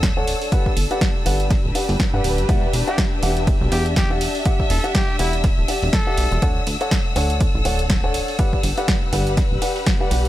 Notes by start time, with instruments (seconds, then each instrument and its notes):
Already playing: analog synth bass D1, string section D4 A4, violin section E6
0.03 kick, snare, closed hi-hat, ride
0.17 upright piano A4 C#5 D5 F#5
0.28 open hi-hat, ride
0.42 open hi-hat
0.52 upright piano G4 B4 D5 F#5, kick, closed hi-hat, ride
0.66 kick
0.76 analog synth bass G1, string section G4, open hi-hat, ride
0.91 upright piano G4 B4 D5 F#5, closed hi-hat
1.01 kick, snare, closed hi-hat, ride
1.26 analog synth bass G1, upright piano G4 B4 D5 F#5, open hi-hat, ride
1.40 string section B4, closed hi-hat
1.50 kick, snare, closed hi-hat, ride
1.64 analog synth bass D1
1.75 upright piano G4 B4 D5 F#5, open hi-hat, ride
1.89 analog synth bass G1, open hi-hat
2.00 kick, snare, closed hi-hat, ride
2.14 analog synth bass G2, upright piano G4 B4 D5 F#5
2.24 analog synth bass D1, open hi-hat, ride
2.38 analog synth bass G1, closed hi-hat
2.49 analog synth bass E1, upright piano G4 D5 E5 F#5, violin section E6, kick, closed hi-hat, ride
2.73 analog synth bass E1, open hi-hat, ride
2.87 trumpet G4, upright piano G4 D5 E5 F#5, closed hi-hat
2.98 kick, snare, closed hi-hat, ride
3.23 analog synth bass E1, upright piano G4 D5 E5 F#5, open hi-hat, ride
3.30 string section E5
3.37 closed hi-hat
3.47 kick, closed hi-hat, ride
3.61 analog synth bass B1
3.72 analog synth bass E2, trumpet G4, upright piano G4 D5 E5 F#5, open hi-hat, ride
3.86 closed hi-hat
3.96 trumpet G4, kick, snare, closed hi-hat, ride
4.10 upright piano G4 D5 E5 F#5
4.21 open hi-hat, ride
4.35 open hi-hat
4.45 upright piano G4 D5 E5 F#5, kick, closed hi-hat, ride
4.60 kick
4.70 analog synth bass E1, trumpet A4, open hi-hat, ride
4.84 upright piano G4 D5 E5 F#5, closed hi-hat
4.95 trumpet G4, kick, snare, closed hi-hat, ride
5.19 analog synth bass E1, trumpet E4, upright piano G4 D5 E5 F#5, open hi-hat, ride
5.33 closed hi-hat
5.44 kick, snare, closed hi-hat, ride
5.58 analog synth bass D1
5.68 upright piano G4 D5 E5 F#5, open hi-hat, ride
5.82 analog synth bass E1, open hi-hat
5.93 trumpet A4, kick, snare, closed hi-hat, ride
6.07 upright piano G4 D5 E5 F#5
6.17 analog synth bass B1, open hi-hat, ride
6.32 analog synth bass E1, closed hi-hat
6.42 analog synth bass D2, upright piano A4 C#5 D5 F#5, kick, closed hi-hat, ride
6.67 analog synth bass D2, open hi-hat, ride
6.75 string section F#5
6.81 upright piano A4 C#5 D5 F#5, closed hi-hat
6.91 kick, snare, closed hi-hat, ride
6.96 string section A4
7.16 analog synth bass D2, upright piano A4 C#5 D5 F#5, open hi-hat, ride
7.30 closed hi-hat
7.40 kick, closed hi-hat, ride
7.55 analog synth bass A1
7.65 analog synth bass D1, upright piano A4 C#5 D5 F#5, open hi-hat, ride
7.79 closed hi-hat
7.90 kick, snare, closed hi-hat, ride
8.04 upright piano A4 C#5 D5 F#5
8.14 open hi-hat, ride
8.28 open hi-hat
8.39 upright piano G4 B4 D5 F#5, kick, closed hi-hat, ride
8.52 string section G4, kick
8.63 analog synth bass G1, string section B4, open hi-hat, ride
8.78 upright piano G4 B4 D5 F#5, closed hi-hat
8.88 kick, snare, closed hi-hat, ride
9.13 analog synth bass G1, upright piano G4 B4 D5 F#5, open hi-hat, ride
9.27 closed hi-hat
9.37 kick, snare, closed hi-hat, ride
9.51 analog synth bass D1
9.62 upright piano G4 B4 D5 F#5, open hi-hat, ride
9.76 open hi-hat
9.86 kick, snare, closed hi-hat, ride
10.00 upright piano G4 B4 D5 F#5
10.11 analog synth bass B1, open hi-hat, ride
10.25 closed hi-hat